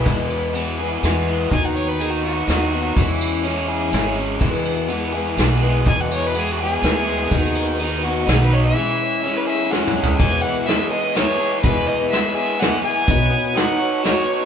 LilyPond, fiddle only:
\new Staff \with { instrumentName = "Fiddle" } { \time 3/4 \key e \major \tempo 4 = 125 r2. | gis''16 fis''16 cis''16 b'16 gis'16 fis'16 fis'4.~ | fis'4. r4. | r2. |
gis''16 fis''16 cis''16 b'16 gis'16 fis'16 gis'4.~ | gis'4. r8 gis'16 b'16 cis''16 e''16~ | e''4~ e''16 b'16 e''8 fis''4 | gis''8 fis''8 e''8 dis''8 cis''4 |
b'8 dis''8 e''8 e''8 fis''8 gis''8~ | gis''4 fis''4 cis''4 | }